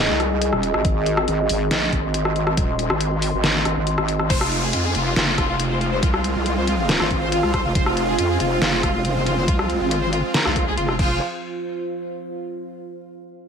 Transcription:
Already playing: G#4 D#5 A#5
0.09 C2
0.20 cross-stick, closed hi-hat
0.42 closed hi-hat
0.53 D#1 C6, cross-stick
0.63 closed hi-hat
0.74 G#1, cross-stick
0.85 G#1, kick, closed hi-hat
1.06 closed hi-hat
1.17 cross-stick
1.28 G#1, closed hi-hat
1.49 G#1, open hi-hat
1.71 A#1, snare, closed hi-hat
1.93 G#1, kick, closed hi-hat
2.14 closed hi-hat
2.25 cross-stick
2.36 closed hi-hat
2.47 cross-stick
2.57 D#1, kick, closed hi-hat
2.79 closed hi-hat
2.90 G#1, cross-stick
3.01 closed hi-hat
3.22 open hi-hat
3.33 G#1
3.44 snare, closed hi-hat
3.65 G#1, cross-stick, closed hi-hat
3.76 G#1
3.87 closed hi-hat
3.98 G#1, cross-stick
4.08 closed hi-hat
4.19 cross-stick
4.30 F1 G#3 C4 F4 C5, kick, closed hi-hat, crash, downlifter
4.41 F4 C5, cross-stick
4.52 F4, closed hi-hat
4.63 G#4
4.73 F2 F4, closed hi-hat
4.84 G#4
4.90 F5
4.95 F1 F4, closed hi-hat
5.06 F4
5.16 F#1 F4, snare, closed hi-hat
5.27 F4
5.38 F1 F4, kick, cross-stick, closed hi-hat
5.49 F4
5.60 F4, closed hi-hat
5.71 C5
5.81 F4, closed hi-hat
5.92 C5
6.03 C2 F4, kick, closed hi-hat
6.14 F4, cross-stick
6.24 closed hi-hat
6.35 C2 F4
6.46 F4, closed hi-hat
6.57 C5
6.67 F4, closed hi-hat
6.78 F4
6.89 A#4, snare, closed hi-hat
7.00 G#1 F4, cross-stick
7.11 F4, kick, closed hi-hat
7.22 C5
7.32 F4, closed hi-hat
7.43 C2 F4, cross-stick
7.54 C5, kick, cross-stick, closed hi-hat
7.65 F1 F4
7.75 F1 C5, kick, closed hi-hat
7.86 F4, cross-stick
7.97 F4, closed hi-hat
8.08 G#4
8.19 F2 F4, closed hi-hat
8.30 G#4
8.40 F1 F4, closed hi-hat
8.51 F4
8.62 F#1 F4, snare, closed hi-hat
8.73 F4
8.83 F1 F4, kick, cross-stick, closed hi-hat
8.94 F4
9.05 F4, closed hi-hat
9.16 C5
9.26 F4, closed hi-hat
9.37 C5
9.48 C2 F4, kick, closed hi-hat
9.59 F4, cross-stick
9.70 closed hi-hat
9.80 G#1 F4
9.91 F4, closed hi-hat
10.02 C5
10.13 F4, closed hi-hat
10.24 F4
10.34 A#4, snare, closed hi-hat
10.45 C2 F4, cross-stick
10.56 F4, kick, closed hi-hat
10.67 C2 G#4
10.77 F1 F4, closed hi-hat
10.88 F4, cross-stick
10.99 F1 F3 F4 G#4 C5, kick, crash
11.06 C5
11.34 F5

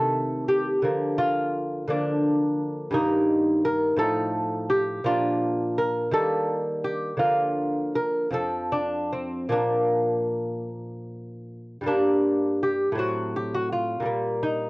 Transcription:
Already playing: C3 D#3 A3 A4
0.48 G4
0.82 D3 F3 A#3
1.18 F4
1.88 D3 F3 A#3 D4
2.91 G2 D#3 A#3 D#4
3.65 A#4
3.96 A2 F3 D#4 A4
4.70 G4
5.04 A#2 F3 D4 F4
5.78 A#4
6.11 D#3 G3 A#3 A4
6.84 G4
7.17 D3 F3 A#3 F4
7.95 A#4
8.31 F2 F3 C4 A4
8.72 D4
9.13 C4
9.49 A#2 F3 A#3 D4
11.81 G2 G3
11.86 A#3 D4
12.63 G4
12.92 A2 F#3
12.98 C4 F#4
13.36 G4
13.55 F#4
13.73 F4
14.00 A#2 G3
14.05 A#3
14.43 D#4

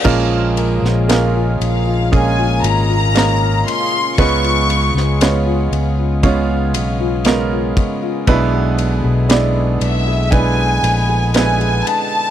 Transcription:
Already playing: C#4 F4 C#5 F5
0.04 A#1 A#2 C#3 F3 G#3 A#3 C#4 F4 G#4 A#4, kick, crash
0.32 F4
0.57 A#4, ride
0.82 A#1 F4, snare
1.08 G#3 A#3 C#4 F4 A#4, snare, ride
1.35 F4
1.60 A#1 C#4, ride
1.64 F5
1.87 F4
2.12 A#2 G#3 A#3 C#4 F4 G#4 A#4, kick, ride
2.16 G#5
2.39 F4
2.63 G#1 A#4 A#5, ride
2.90 F4
3.15 G#3 A#3 C#4 F4 A#4, snare, ride
3.41 F4
3.67 C#4 C6, ride
3.92 F4
4.18 C#2 C#3 G#3 B3 C#4 F4 B4 C#6, kick, ride
4.44 F4, ride
4.69 B4, ride
4.95 C#2 F4, snare
5.21 G#3 B3 C#4 F4 B4 C#5, snare, ride
5.46 F4
5.71 C#2 C#4, ride
5.98 F4
6.23 C#3 G#3 B3 C#4 F4 B4 C#5, kick, ride
6.50 F4
6.74 B1 B4, ride
7.00 F4
7.25 G#3 B3 C#4 F4 A#4 B4, snare, ride
7.52 F4
7.77 C#4, kick, ride
8.02 F4
8.27 B1 B2 D3 G#3 B3 D4 E4 B4, kick, ride
8.53 G#4
8.78 B4, ride
9.04 B1 G#4
9.29 G#3 B3 D4 E4 B4 D5, snare, ride
9.56 G#4
9.81 B1 D4 E5, ride
10.07 G#4
10.31 G#3 B3 D4 E4 B4 G#5, kick, ride
10.58 G#4
10.83 A#1 B4, ride
11.09 G#4
11.34 G#3 B3 D4 E4 B4 G#5, snare, ride
11.60 G#4, ride
11.84 D4 A5, ride

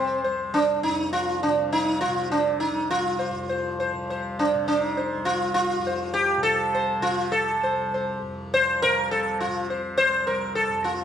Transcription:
Already playing: C2 F2 C3 C4 C5
0.22 C2 C5
0.54 D4
0.83 F2 D#4
1.13 F4
1.43 C3 D4
1.73 D#4
2.01 F4
2.08 C3
2.32 D4
2.60 D#4
2.69 C2
2.91 F4
3.19 C5
3.30 F2
3.49 C5
3.80 C5
3.93 C3
4.10 C5
4.39 D4
4.54 C3
4.68 D4
4.83 D#4
4.97 C5
5.14 C2
5.25 F4
5.54 F4
5.78 F2
5.87 C5
6.14 G4
6.37 C3
6.43 A4
6.75 C5
7.00 C3 F4
7.32 A4
7.61 C2 C5
7.94 C5
8.22 F2
8.54 C5
8.82 C3 A#4
9.11 A4
9.41 F4
9.47 C3
9.70 C5
9.98 C5
10.06 C2
10.27 A#4
10.55 A4
10.69 F2
10.84 F4

